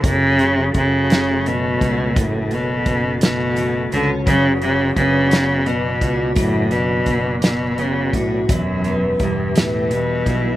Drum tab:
HH |xxxxxx|xxxxxx|xxxxxx|xxxxxx|
SD |---o--|---o--|---o--|---o--|
BD |o-o--o|o-o---|o-o--o|o-o--o|

HH |xxxxxx|
SD |---o--|
BD |o-o--o|